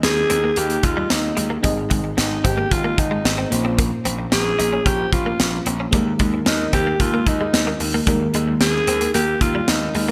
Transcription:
Already playing: fm electric piano D#3 A#3 D#4 G#4 D#5
0.03 slap bass D#2, alto saxophone G#4, muted clean electric guitar stroke, snare, closed hi-hat
0.30 slap bass D#2, clean electric guitar C4, closed hi-hat
0.44 clean electric guitar A#3
0.56 slap bass D#2, clean electric guitar A#3, alto saxophone G4, closed hi-hat
0.70 closed hi-hat
0.83 slap bass D#2, alto saxophone F4, muted clean electric guitar stroke, kick, closed hi-hat
0.97 clean electric guitar G3
1.10 slap bass D#2, alto saxophone D#4, muted clean electric guitar stroke, snare, closed hi-hat
1.37 slap bass D#2, clean electric guitar G#3, closed hi-hat
1.50 clean electric guitar A#3
1.63 slap bass G#1, fm electric piano G#2 C4 D#4 G#4 D#5, clean electric guitar G3, kick, closed hi-hat
1.90 slap bass G#1, clean electric guitar G#3, kick, closed hi-hat
2.04 muted clean electric guitar stroke
2.17 slap bass G#1, alto saxophone D#4, muted clean electric guitar stroke, snare, closed hi-hat
2.44 slap bass G#1, clean electric guitar C4, alto saxophone G4, kick, closed hi-hat
2.58 clean electric guitar A#3
2.71 slap bass G#1, alto saxophone F4, kick, closed hi-hat
2.84 clean electric guitar A#3
2.98 slap bass G#1, alto saxophone D#4, muted clean electric guitar stroke, kick, closed hi-hat
3.11 clean electric guitar G#3
3.25 slap bass G#1, snare, closed hi-hat
3.38 clean electric guitar C4
3.50 slap bass A#1, fm electric piano A#2 A#3 C4 F4 C5, muted clean electric guitar stroke, closed hi-hat
3.58 fm electric piano C#4
3.65 clean electric guitar C4
3.78 clean electric guitar A#3, kick, closed hi-hat
4.05 slap bass A#1, clean electric guitar C4, closed hi-hat
4.19 muted clean electric guitar stroke
4.32 slap bass A#1, alto saxophone G#4, muted clean electric guitar stroke, snare, closed hi-hat
4.59 slap bass A#1, clean electric guitar D#4, closed hi-hat
4.73 clean electric guitar C#4
4.85 slap bass A#1, clean electric guitar C#4, alto saxophone G4, kick, closed hi-hat
5.13 slap bass A#1, alto saxophone F4, muted clean electric guitar stroke, kick, closed hi-hat
5.26 clean electric guitar A#3
5.40 slap bass A#1, muted clean electric guitar stroke, snare, closed hi-hat
5.66 slap bass A#1, clean electric guitar C4, closed hi-hat
5.80 clean electric guitar C#4
5.91 slap bass D#2, fm electric piano D#3 G#3 A#3 D#4 A#4, clean electric guitar G3, kick, closed hi-hat
6.19 slap bass D#2, clean electric guitar G#3, kick, closed hi-hat
6.34 muted clean electric guitar stroke
6.46 slap bass D#2, alto saxophone D#4, muted clean electric guitar stroke, snare, closed hi-hat
6.73 slap bass D#2, clean electric guitar C4, alto saxophone G4, kick, closed hi-hat
6.87 clean electric guitar A#3
7.00 slap bass D#2, alto saxophone F4, kick, closed hi-hat
7.14 clean electric guitar A#3
7.26 slap bass D#2, alto saxophone D#4, muted clean electric guitar stroke, kick, closed hi-hat
7.41 clean electric guitar G#3
7.53 slap bass D#2, snare, closed hi-hat
7.67 clean electric guitar A#3
7.80 slap bass D#2, muted clean electric guitar stroke, open hi-hat
7.94 clean electric guitar A#3
8.06 slap bass D#2, fm electric piano D#3 G#3 A#3 D#4 A#4, clean electric guitar G3, kick, closed hi-hat
8.34 slap bass D#2, clean electric guitar G#3, closed hi-hat
8.48 muted clean electric guitar stroke
8.60 slap bass D#2, alto saxophone G#4, muted clean electric guitar stroke, snare, closed hi-hat
8.87 slap bass D#2, clean electric guitar C4, closed hi-hat
9.01 clean electric guitar A#3, closed hi-hat
9.14 slap bass D#2, clean electric guitar A#3, alto saxophone G4, closed hi-hat
9.41 slap bass D#2, alto saxophone F4, muted clean electric guitar stroke, kick, closed hi-hat
9.55 clean electric guitar G3
9.68 slap bass D#2, alto saxophone D#4, muted clean electric guitar stroke, snare, closed hi-hat
9.95 slap bass D#2, clean electric guitar G#3, open hi-hat
10.08 clean electric guitar A#3

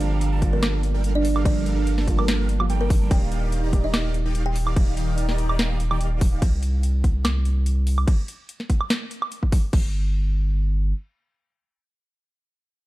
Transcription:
Already playing: sub bass G1, synth pluck D3 F3 G3 A#3 F4
0.01 analog polysynth G3 D4 A4 A#4 F5, closed hi-hat
0.21 closed hi-hat
0.32 analog polysynth G3 D4 A4 A#4 A5
0.40 synth pluck D3 F3 G3 A#3 F4, kick, closed hi-hat
0.53 kalimba A#3 A#4
0.63 analog polysynth G3 D4 A4 A#4 F5, snare, closed hi-hat, high woodblock
0.83 closed hi-hat
0.94 analog polysynth G3 D4 A4 A#4 G5
1.04 analog polysynth G3 D4 A4 A#4 F5, closed hi-hat
1.15 kalimba D4 D5
1.25 open hi-hat
1.36 high woodblock
1.44 synth pluck D3 F3 G3 A#3 D4, analog polysynth G3 D4 A4 A#4 F5, kalimba D4 D5, kick, closed hi-hat, crash
1.66 analog polysynth G3 D4 A4 A#4 F5, closed hi-hat
1.87 closed hi-hat
1.98 analog polysynth G3 D4 A4 A#4 A5, snare
2.06 synth pluck D3 F3 G3 A#3, kick, closed hi-hat
2.10 synth pluck F4
2.18 kalimba A#3 A#4, high woodblock
2.28 analog polysynth G3 D4 A4 A#4 F5, snare, closed hi-hat
2.49 closed hi-hat
2.59 synth pluck D3 F3 G3 A#3 F4, high woodblock
2.70 analog polysynth G3 D4 A4 A#4 G5, closed hi-hat
2.81 kalimba A#3 A#4
2.90 kick, open hi-hat
3.01 analog polysynth G3 D4 A4 A#4 G5
3.09 sub bass D#1, synth pluck D#3 G3 A#3 D4 G4, analog polysynth D#3 D#4 G4 D5 F5, kalimba G4 G5, kick, closed hi-hat, crash
3.32 analog polysynth D#3 D#4 G4 D5 F5, closed hi-hat
3.52 closed hi-hat
3.63 analog polysynth D#3 D#4 G4 D5 A#5
3.71 synth pluck D#3 G3 A#3 G4 D5, kick, closed hi-hat
3.84 kalimba D#4 D#5
3.94 analog polysynth D#3 D#4 G4 D5 F5, snare, closed hi-hat, high woodblock
4.14 closed hi-hat
4.25 analog polysynth D#3 D#4 G4 D5 G5
4.35 analog polysynth D#3 D#4 G4 D5 F5, closed hi-hat
4.46 kalimba G4 G5
4.56 open hi-hat
4.67 high woodblock
4.76 analog polysynth D#3 D#4 G4 D5 F5, kick, closed hi-hat, crash
4.97 analog polysynth D#3 D#4 G4 D5 F5, closed hi-hat
5.18 closed hi-hat
5.29 analog polysynth D#3 D#4 G4 D5 A#5, snare
5.38 closed hi-hat
5.49 high woodblock
5.59 analog polysynth D#3 D#4 G4 D5 F5, snare, closed hi-hat
5.80 closed hi-hat
5.91 analog polysynth D#3 D#4 G4 D5 G5, high woodblock
6.00 analog polysynth D#3 D#4 G4 D5 F5, closed hi-hat
6.21 kick, open hi-hat
6.42 sub bass C2, kick, closed hi-hat, crash
6.63 closed hi-hat
6.83 closed hi-hat
7.04 kick, closed hi-hat
7.25 snare, closed hi-hat, high woodblock
7.45 closed hi-hat
7.66 closed hi-hat
7.87 open hi-hat
7.98 high woodblock
8.08 kick, closed hi-hat, crash
8.28 closed hi-hat
8.49 closed hi-hat
8.60 snare
8.70 kick, closed hi-hat
8.81 high woodblock
8.90 snare, closed hi-hat
9.11 closed hi-hat
9.22 high woodblock
9.32 closed hi-hat
9.43 kick
9.52 kick, open hi-hat
9.73 sub bass G1, kick, crash

